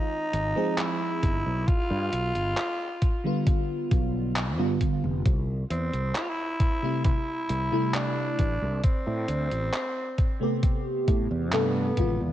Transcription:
Already playing: tenor saxophone D#4
0.33 fretless electric bass G#1, closed hi-hat
0.55 fm electric piano F3 G#3 C4 G#4
0.78 tenor saxophone E4, clap, closed hi-hat
1.23 fretless electric bass G1, kick, closed hi-hat
1.46 fretless electric bass B1
1.67 tenor saxophone F4, kick, closed hi-hat
1.90 fretless electric bass G2
2.12 fretless electric bass B1, closed hi-hat
2.35 fretless electric bass G1, closed hi-hat
2.57 clap, closed hi-hat
3.02 kick, closed hi-hat
3.24 fm electric piano D3 G3 B3 F4
3.47 kick, closed hi-hat
3.91 fretless electric bass B1, kick, closed hi-hat
4.36 clap, closed hi-hat
4.58 fretless electric bass G2, fm electric piano D3 G3 B3 F4
4.81 kick, closed hi-hat
5.04 fretless electric bass F1
5.26 fretless electric bass C2, kick, closed hi-hat
5.70 fretless electric bass E2, tenor saxophone C4, closed hi-hat
5.93 fretless electric bass C2, closed hi-hat
6.15 tenor saxophone E4, clap, closed hi-hat
6.22 tenor saxophone F4
6.29 tenor saxophone E4
6.60 kick, closed hi-hat
6.82 fm electric piano C3 G3 A3 E4
7.04 tenor saxophone E4, kick, closed hi-hat
7.49 fretless electric bass C2, closed hi-hat
7.71 fm electric piano C3 G3 A3 E4
7.94 tenor saxophone D4, clap, closed hi-hat
8.39 fretless electric bass A1, kick, closed hi-hat
8.62 fretless electric bass C2
8.84 tenor saxophone C4, kick, closed hi-hat
9.07 fretless electric bass A2
9.28 fretless electric bass D2, closed hi-hat
9.51 fretless electric bass A1, closed hi-hat
9.73 clap, closed hi-hat
10.18 kick, closed hi-hat
10.40 fm electric piano C3 A3 B3 G4
10.63 kick, closed hi-hat
11.08 fretless electric bass A2, kick, closed hi-hat
11.31 fretless electric bass E2
11.52 fretless electric bass G2, fm electric piano C3 A3 B3 A4, tenor saxophone B3, clap, closed hi-hat
11.96 fretless electric bass A1, fm electric piano C3 D#3 G#3 F4, kick, closed hi-hat
12.20 fretless electric bass E2

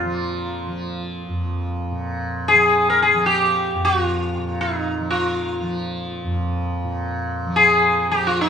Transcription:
Already playing: tanpura F2 A#2 F3, sitar F4
0.03 tanpura F3
0.66 tanpura F3
1.28 tanpura F2
1.91 tanpura A#2
2.48 sitar G#4
2.52 tanpura F3
2.90 sitar A#4
3.02 sitar G#4
3.13 tanpura F3
3.26 sitar G4
3.74 tanpura F2
3.85 sitar F#4
4.01 sitar F4
4.38 tanpura A#2
4.61 sitar D#4
4.98 tanpura F3
5.11 sitar F4
5.61 tanpura F3
6.24 tanpura F2
6.84 tanpura A#2
7.46 tanpura F3
7.56 sitar G#4
8.09 tanpura F3, sitar G4
8.27 sitar F4
8.41 sitar D#4

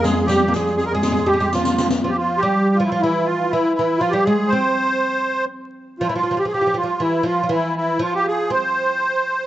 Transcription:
Already playing: cello section F2
0.02 oud G#3, accordion G#4, riq
0.17 riq
0.21 accordion G#4
0.26 oud G3, accordion G4, riq
0.48 oud A#3, accordion G#4
0.54 oud G#3, riq
0.67 riq
0.77 accordion G#4, riq
0.86 accordion A#4
0.91 oud G#3, accordion G#4
1.03 oud G#3, riq
1.12 oud G#3
1.16 oud G#3, riq
1.26 oud G#3, accordion G4
1.33 oud G#3
1.40 oud G#3, riq
1.52 oud F3, accordion F4, riq
1.65 riq
1.78 riq
1.90 riq
2.03 oud F3, accordion F4
2.09 accordion G4
2.17 accordion F4
2.38 accordion G4
2.43 oud G3
2.75 accordion F4
2.80 oud F3
2.84 accordion E4 F4
2.92 oud F3
3.01 oud E3, accordion E4
3.25 accordion F4
3.51 oud E3, accordion E4
3.74 accordion E4
3.79 oud E3
3.98 oud F3, accordion F4
4.10 oud G3, accordion G4
4.23 oud G#3, accordion G#4
4.48 accordion C5
4.52 oud C4
5.99 oud F3, accordion F4
6.07 oud F3, accordion E4
6.15 oud F3, accordion F4
6.23 oud F3
6.31 oud F3
6.37 oud F3, accordion G4
6.45 oud F3, accordion G#4
6.53 oud F3, accordion G4
6.61 oud F3
6.67 oud F3
6.74 oud F3, accordion F4
6.83 oud F3
7.00 oud E3, accordion E4
7.23 oud F3, accordion F4
7.43 oud F3
7.49 oud E3, accordion E4
7.76 accordion E4
7.99 oud F3, accordion F4
8.15 accordion G4
8.27 accordion G#4
8.50 oud C4, accordion C5

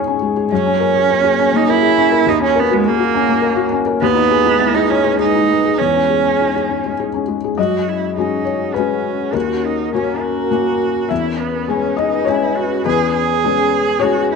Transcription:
Already playing: felt piano E2 G#3 C#4 D#4 G#4, ambient pad G#3 G#4 C#5
0.08 felt piano C#4
0.22 felt piano G#3
0.37 felt piano G#4
0.51 felt piano F#2, ambient pad A#3, cello C#4
0.66 felt piano C#4
0.80 felt piano A#4
0.96 felt piano G#4
1.10 felt piano A#4
1.24 felt piano G#4
1.39 felt piano C#4
1.53 felt piano A#3, cello D#4
1.68 cello E4, felt piano A#4
1.82 felt piano G#4
1.98 felt piano C#4
2.12 felt piano A#4
2.26 felt piano D#2, cello D#4, ambient pad F#4
2.40 felt piano C#4, cello C#4
2.55 cello B3, felt piano A#4
2.71 cello G#3, felt piano F#4
2.86 cello A#3, felt piano G#4
2.99 felt piano F#4
3.14 felt piano C#4
3.29 felt piano A#3
3.42 felt piano A#4
3.56 felt piano F#4
3.71 felt piano C#4
3.86 felt piano A#4
4.01 felt piano D#2, ambient pad G#3 G#4 B4, cello B3
4.15 felt piano D#4
4.31 felt piano G#4
4.46 felt piano D#4
4.59 felt piano E4
4.74 cello D#4, felt piano G#4
4.90 cello C#4, felt piano D#4
5.04 felt piano G#3
5.19 cello D#4, felt piano G#4
5.35 felt piano D#4
5.50 felt piano G#3
5.65 felt piano G#4
5.78 felt piano E2, cello C#4, ambient pad G#4
5.95 felt piano C#4
6.10 felt piano G#4
6.25 felt piano C#4
6.41 felt piano D#4
6.56 felt piano G#4
6.69 felt piano C#4
6.86 felt piano G#3
7.00 felt piano G#4
7.14 felt piano C#4
7.28 felt piano G#3
7.44 felt piano G#4
7.56 felt piano F#2 D#5, ambient pad C#4 F#4 G#4, cello F#4
7.88 cello E4
8.17 felt piano G#3 C#4 F#4, cello D#4
8.45 felt piano C#5
8.74 felt piano G#3 F#4 B4, cello C#4
8.78 felt piano C#4
9.32 felt piano D#2 A#4, cello F#4, ambient pad A#4
9.65 cello D#4
9.94 felt piano A#3 C#4 F#4, cello C#4
10.22 cello F#4
10.51 felt piano A#3 C#4 F#4
11.09 felt piano E2 E5, ambient pad C#4 G#4 B4, cello E4
11.39 cello B3
11.68 felt piano G#3 C#4 G#4, cello C#4
11.97 cello D#4, felt piano D#5
12.25 felt piano G#3 C#4 G#4 C#5, cello E4
12.56 cello F#4
12.85 felt piano E2 B4, cello G#4
13.14 cello G#4
13.44 felt piano G#3 C#4 G#4
13.99 felt piano G#3 C#4 G#4 C#5, cello F#4
14.32 cello E4

